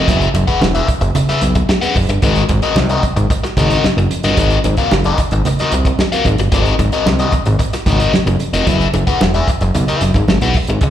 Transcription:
0.08 F#1 C#4 G#4 B4 E5, kick, closed hi-hat, muted conga
0.21 closed hi-hat
0.34 F#1, muted overdriven electric guitar stroke, closed hi-hat, muted conga
0.47 C#4 G#4 B4 F#5, kick, closed hi-hat
0.61 E1, muted overdriven electric guitar stroke, snare, high conga
0.75 C#4 G#4 B4 E5, closed hi-hat
0.87 muted overdriven electric guitar stroke, kick, closed hi-hat, muted conga
1.01 F#1, muted overdriven electric guitar stroke, closed hi-hat
1.15 muted overdriven electric guitar stroke, closed hi-hat, low conga
1.29 C#4 G#4 B4 E5, snare, closed hi-hat
1.41 B1, muted overdriven electric guitar stroke, snare, closed hi-hat
1.55 muted overdriven electric guitar stroke, kick, closed hi-hat
1.69 muted overdriven electric guitar stroke, snare, high conga
1.82 C#4 G#4 B4 F#5, closed hi-hat
1.95 F#1, muted overdriven electric guitar stroke, kick, open hi-hat, high conga
2.09 G1, muted overdriven electric guitar stroke, closed hi-hat
2.22 G#1 C4 F#4 A#4 D#5, kick, closed hi-hat, muted conga
2.35 closed hi-hat
2.49 G#1, muted overdriven electric guitar stroke, kick, closed hi-hat, muted conga
2.62 C4 F#4 A#4 D#5, closed hi-hat
2.76 C2, muted overdriven electric guitar stroke, snare, high conga
2.89 C4 F#4 A#4 D#5, closed hi-hat
3.03 muted overdriven electric guitar stroke, kick, closed hi-hat, muted conga
3.16 G#1, muted overdriven electric guitar stroke, closed hi-hat
3.30 muted overdriven electric guitar stroke, kick, closed hi-hat
3.44 muted overdriven electric guitar stroke, snare, closed hi-hat
3.57 G#1 C4 F#4 A#4 D#5, kick, snare, closed hi-hat, low conga
3.70 C4 F#4 A#4 D#5, closed hi-hat
3.84 F#1, muted overdriven electric guitar stroke, snare, high conga
3.97 F#1, muted overdriven electric guitar stroke, closed hi-hat
4.11 closed hi-hat, high conga
4.23 G1 C4 F#4 A#4 D#5, closed hi-hat
4.37 G#1 C4 F#4 A#4 D#5, kick, closed hi-hat, muted conga
4.50 closed hi-hat
4.64 G#1, muted overdriven electric guitar stroke, closed hi-hat, muted conga
4.77 C4 F#4 A#4 F5, kick, closed hi-hat
4.91 F#1, muted overdriven electric guitar stroke, snare, high conga
5.04 C4 F#4 A#4 D#5, closed hi-hat
5.18 muted overdriven electric guitar stroke, kick, closed hi-hat, muted conga
5.31 G#1, muted overdriven electric guitar stroke, closed hi-hat
5.45 muted overdriven electric guitar stroke, closed hi-hat, low conga
5.59 C4 F#4 A#4 D#5, snare, closed hi-hat
5.71 C2, muted overdriven electric guitar stroke, closed hi-hat
5.85 muted overdriven electric guitar stroke, kick, closed hi-hat
5.99 muted overdriven electric guitar stroke, snare, high conga
6.12 C4 F#4 A#4 F5, closed hi-hat
6.25 G#1, muted overdriven electric guitar stroke, kick, closed hi-hat, high conga
6.38 G1, muted overdriven electric guitar stroke, closed hi-hat
6.52 G#1 C4 F#4 A#4 D#5, kick, closed hi-hat, muted conga
6.66 closed hi-hat
6.79 G#1, muted overdriven electric guitar stroke, kick, closed hi-hat, muted conga
6.92 C4 F#4 A#4 D#5, closed hi-hat
7.06 C2, muted overdriven electric guitar stroke, snare, high conga
7.19 C4 F#4 A#4 D#5, closed hi-hat
7.32 muted overdriven electric guitar stroke, kick, closed hi-hat, muted conga
7.46 G#1, muted overdriven electric guitar stroke, closed hi-hat
7.59 muted overdriven electric guitar stroke, kick, closed hi-hat
7.73 muted overdriven electric guitar stroke, snare, closed hi-hat
7.86 G#1 C4 F#4 A#4 D#5, kick, closed hi-hat, low conga
8.00 C4 F#4 A#4 D#5, closed hi-hat
8.13 F#1, muted overdriven electric guitar stroke, snare, high conga
8.26 F#1, muted overdriven electric guitar stroke, closed hi-hat
8.39 closed hi-hat, high conga
8.53 F1 C4 F#4 A#4 D#5, closed hi-hat
8.67 F#1 E4 G#4 B4 E5, kick, closed hi-hat, muted conga
8.80 closed hi-hat
8.94 F#1, muted overdriven electric guitar stroke, closed hi-hat, muted conga
9.07 E4 G#4 B4 F#5, kick, closed hi-hat
9.21 E1, muted overdriven electric guitar stroke, snare, high conga
9.34 E4 G#4 B4 E5, closed hi-hat
9.48 muted overdriven electric guitar stroke, kick, closed hi-hat
9.61 F#1, muted overdriven electric guitar stroke, closed hi-hat
9.74 B1, muted overdriven electric guitar stroke, closed hi-hat, low conga
9.88 E4 G#4 B4 E5, closed hi-hat
10.01 F#1, muted overdriven electric guitar stroke, snare, closed hi-hat
10.14 G#1, muted overdriven electric guitar stroke, kick, closed hi-hat
10.28 G#1, muted overdriven electric guitar stroke, snare, high conga
10.41 B1 E4 G#4 B4 F#5, closed hi-hat
10.54 muted overdriven electric guitar stroke, kick, open hi-hat, high conga
10.67 G#1, muted overdriven electric guitar stroke, closed hi-hat
10.81 C#2, muted overdriven electric guitar stroke, kick, closed hi-hat

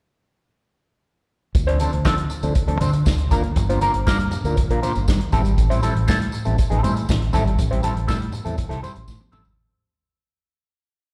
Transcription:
1.55 D2, muted clean electric guitar stroke, kick, closed hi-hat, tambourine, muted conga
1.67 F3 C4 D4 C5, closed hi-hat
1.80 F3 C4 D4 A4, closed hi-hat, tambourine, muted conga
1.93 D2, muted clean electric guitar stroke, closed hi-hat
2.05 D3 F3 C4 D4 A4, kick, snare, tambourine, high conga
2.17 muted clean electric guitar stroke, closed hi-hat
2.30 muted clean electric guitar stroke, closed hi-hat, tambourine
2.43 D2 F3 C4 D4 A4, closed hi-hat, tambourine
2.55 muted clean electric guitar stroke, kick, closed hi-hat, tambourine, muted conga
2.68 D2 F3 C4 D4 A4, closed hi-hat
2.80 D3 F3 C4 D4 C5, closed hi-hat, tambourine, muted conga, low conga
2.93 muted clean electric guitar stroke, closed hi-hat, tambourine
3.06 D2, kick, snare, tambourine, high conga
3.18 muted clean electric guitar stroke, closed hi-hat
3.31 G1 A#3 D4 F4 A#4, kick, closed hi-hat, tambourine, high conga
3.43 muted clean electric guitar stroke, closed hi-hat
3.56 G1, muted clean electric guitar stroke, kick, closed hi-hat, tambourine, muted conga
3.69 A#3 D4 F4 C5, closed hi-hat, tambourine
3.81 A#3 D4 F4 A#4, closed hi-hat, tambourine, muted conga
3.94 G1, muted clean electric guitar stroke, closed hi-hat
4.06 G2 A#3 D4 F4 A#4, kick, snare, tambourine, high conga
4.20 muted clean electric guitar stroke, closed hi-hat
4.31 muted clean electric guitar stroke, closed hi-hat, tambourine, low conga
4.44 D2 A#3 D4 F4 A#4, closed hi-hat, tambourine
4.57 kick, closed hi-hat, tambourine, muted conga, low conga
4.70 A#1 A#3 D4 F4 A#4, closed hi-hat
4.82 A#3 D4 F4 C5, closed hi-hat, tambourine, muted conga
4.95 G1, muted clean electric guitar stroke, closed hi-hat, tambourine
5.08 G2, kick, snare, tambourine, high conga
5.20 muted clean electric guitar stroke, closed hi-hat
5.32 A1 G3 C4 E4 A4, kick, closed hi-hat, tambourine, high conga
5.44 G#1, muted clean electric guitar stroke, closed hi-hat, tambourine
5.57 A1, muted clean electric guitar stroke, kick, closed hi-hat, tambourine, muted conga
5.70 G3 C4 E4 C5, closed hi-hat, tambourine
5.82 G3 C4 E4 A4, closed hi-hat, tambourine, muted conga
5.96 A1, muted clean electric guitar stroke, closed hi-hat
6.07 A2 G3 C4 E4 A4, kick, snare, tambourine, high conga
6.21 muted clean electric guitar stroke, closed hi-hat
6.32 muted clean electric guitar stroke, closed hi-hat, tambourine
6.45 A1 G3 C4 E4 A4, closed hi-hat, tambourine
6.58 muted clean electric guitar stroke, kick, closed hi-hat, tambourine, muted conga
6.70 A1 G3 C4 E4 A4, closed hi-hat
6.83 A2 G3 C4 E4 C5, closed hi-hat, tambourine, muted conga, low conga
6.96 muted clean electric guitar stroke, closed hi-hat, tambourine
7.09 A1, kick, snare, tambourine, high conga
7.21 muted clean electric guitar stroke, closed hi-hat
7.33 G#1 G3 C4 E4 A4, kick, closed hi-hat, tambourine, high conga
7.46 muted clean electric guitar stroke, closed hi-hat
7.58 A1, muted clean electric guitar stroke, kick, closed hi-hat, tambourine, muted conga
7.71 G3 C4 E4 C5, closed hi-hat
7.83 G3 C4 E4 A4, closed hi-hat, tambourine, muted conga
7.95 A1, muted clean electric guitar stroke, closed hi-hat
8.07 A2 G3 C4 E4 A4, kick, snare, tambourine, high conga
8.20 muted clean electric guitar stroke, closed hi-hat
8.32 muted clean electric guitar stroke, closed hi-hat, tambourine, low conga
8.45 E2 G3 C4 E4 A4, closed hi-hat, tambourine
8.57 muted clean electric guitar stroke, kick, closed hi-hat, tambourine, muted conga, low conga
8.69 C2 G3 C4 E4 A4, snare, closed hi-hat
8.82 G3 C4 E4 C5, closed hi-hat, tambourine, muted conga, low conga
8.95 A1, muted clean electric guitar stroke, closed hi-hat, tambourine
9.08 A2, kick, snare, tambourine, high conga
9.20 muted clean electric guitar stroke, high tom
9.32 A1 G3 C4 E4 A4, mid tom, tambourine, high conga
9.45 G#1, floor tom, tambourine

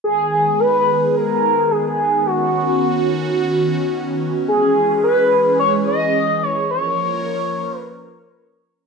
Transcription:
0.04 D#3 G#3 B3 G#4
0.59 B4
1.08 B4
1.15 A#4
1.71 G#4
2.26 C#4 F#4
4.48 E3 G#3 G#4
5.04 B4
5.60 C#5
5.87 D#5
6.43 C#5
6.70 F3 A#3 A#4 C#5
7.79 B4

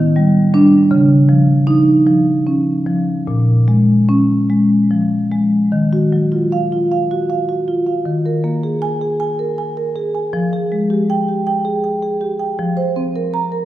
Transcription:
Already playing: D#3
0.16 G3
0.54 G3 D4
0.91 C#3
1.29 F3
1.67 D#4
2.07 F3
2.47 C#4
2.86 F3
3.27 A#2
3.68 G#3
4.09 C#4
4.50 G#3
4.91 F3
5.32 G#3
5.72 D#3
5.93 F#4
6.12 F#3
6.32 F4
6.52 F5
6.72 F4
6.92 F5
7.11 F#4
7.30 F5
7.49 F#4
7.68 F4
7.86 F5
8.06 D#3
8.26 A#4
8.44 A#3
8.63 G#4
8.82 G#5
9.01 G#4
9.20 G#5
9.39 A#4
9.58 G#5
9.77 A#4
9.96 G#4
10.15 G#5
10.33 F3
10.53 G#4
10.72 G#3
10.90 G4
11.10 G5
11.28 G4
11.47 G5
11.65 G#4
11.84 G5
12.03 G#4
12.21 G4
12.39 G5
12.59 F3
12.77 C5
12.96 C4
13.16 A#4
13.34 A#5
13.52 A#4

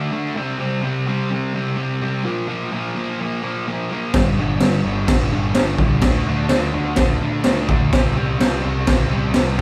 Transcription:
Already playing: D3 A3 D4
0.11 D3 A3 D4
0.36 C3 G3 C4
0.59 C3 G3 C4
0.82 C3 G3 C4
1.07 C3 G3 C4
1.31 C3 G3 C4
1.54 C3 G3 C4
1.77 C3 G3 C4
2.02 C3 G3 C4
2.25 A#2 F3 A#3
2.48 A#2 F3 A#3
2.72 A#2 F3 A#3
2.95 A#2 F3 A#3
3.20 A#2 F3 A#3
3.43 A#2 F3 A#3
3.68 A#2 F3 A#3
3.91 A#2 F3 A#3
4.14 G1 G2 D3 G3, kick, snare, crash
4.37 G1 G2 D3 G3
4.60 G1 G2 D3 G3, snare, crash
4.85 G1 G2 D3 G3
5.08 G2 D3 G3, kick, snare, crash
5.32 G1 G2 D3 G3
5.55 G1 G2 D3 G3, snare, crash
5.78 C2 G2 D3 G3, kick
6.01 D2 D3 A3 D4, kick, snare, crash
6.27 D2 D3 A3 D4
6.49 D2 D3 A3 D4, snare, crash
6.73 D2 D3 A3 D4
6.96 D2 D3 A3 D4, kick, snare, crash
7.21 D2 D3 A3 D4
7.44 D2 D3 A3 D4, snare, crash
7.68 D2 D3 A3 D4, kick
7.93 C2 C3 G3 C4, kick, snare, crash
8.15 C2 C3 G3 C4
8.39 C2 C3 G3 C4, snare, crash
8.63 C2 C3 G3 C4
8.87 C2 C3 G3 C4, kick, snare, crash
9.11 C2 C3 G3 C4
9.34 C2 C3 G3 C4, snare, crash

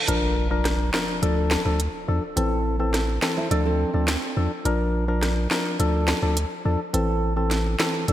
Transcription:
0.08 A#1 F3 D4 A#4, closed hi-hat, impact
0.51 F3 D4 A#4
0.65 cross-stick, snare, closed hi-hat
0.93 F3 D4 A#4, snare
1.22 D2 F3 D4 A4, closed hi-hat
1.51 snare
1.65 D2 F3 D4 A4
1.80 closed hi-hat
2.08 E2 F3 D4 A4
2.36 A1 E3 C4 A4, closed hi-hat
2.79 E3 C4 A4
2.94 cross-stick, snare, closed hi-hat
3.22 E3 C4 A4, snare
3.37 E4 C5
3.51 D2 F3 D4 F4 A4 D5, closed hi-hat
3.65 C4 A4
3.94 D2 F3 D4 A4
4.08 snare, closed hi-hat
4.37 E2 F3 D4 A4
4.65 A#1 F3 D4 A#4, closed hi-hat
5.08 F3 D4 A#4
5.23 cross-stick, snare, closed hi-hat
5.51 F3 D4 A#4, snare
5.79 D2 F3 D4 A4, closed hi-hat
6.08 snare
6.22 D2 F3 D4 A4
6.37 closed hi-hat
6.65 E2 F3 D4 A4
6.93 A1 E3 C4 A4, closed hi-hat
7.36 E3 C4 A4
7.51 snare, closed hi-hat
7.79 E3 C4 A4, snare
8.08 D2 F3 D4 A4, closed hi-hat

